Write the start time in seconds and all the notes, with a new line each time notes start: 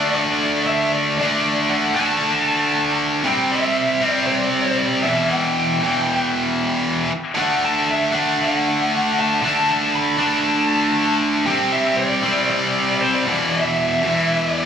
Already playing: D3 A3 D4 D5
0.15 D5
0.66 E5
0.93 D5
1.18 D3 A3 D5
1.23 D4
1.69 F#5
1.95 A3 D4 A5
2.00 D3
3.23 C3 G3 C4 G5
3.52 E5
4.01 C3 G3 C4
4.10 D5
4.26 D5
4.79 D5
5.03 E2 B2 E5
5.07 E3
5.29 G5
5.81 E2 B2
5.85 E3
7.35 D3 A3 D4 F#5
7.65 A5
7.91 E5
8.12 D3 A3 D4 F#5
8.42 F#5
9.20 A5
9.42 D3 A3 D4 A5
9.70 A5
9.95 B5
10.18 D3 A3 D4 A5
11.46 C3 G3 C4 G5
11.72 E5
11.97 D5
12.23 G3 C4
12.27 C3
12.50 D5
13.01 C5
13.14 D5
13.26 E2 B2 E3
13.52 E5
14.02 E2 B2 E3
14.52 D5